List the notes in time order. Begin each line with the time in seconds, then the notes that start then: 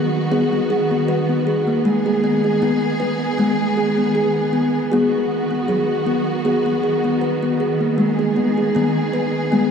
Already playing: D#3 F#3 B3 F#4
0.32 B3 G#4
0.53 B3
0.70 G#4
0.91 B3
1.08 B4
1.29 B3
1.47 G#4
1.67 A#3
1.85 G#3 G#4
2.06 G#4
2.24 B3
2.44 G#4
2.62 D#3 B3
3.00 B4
3.38 G#3 B3
3.77 G#4
3.98 B3
4.15 G#4
4.53 B3
4.92 D#3 B3 F#4 G#4
5.51 B3
5.68 F#3 G#4
6.06 B3
6.45 B3 G#4
6.66 B3
6.83 G#4
7.04 B3
7.21 B4
7.43 B3
7.60 G#4
7.81 A#3
7.98 G#3 G#4
8.19 G#4
8.36 B3
8.58 G#4
8.75 D#3 B3
9.13 B4
9.52 G#3 B3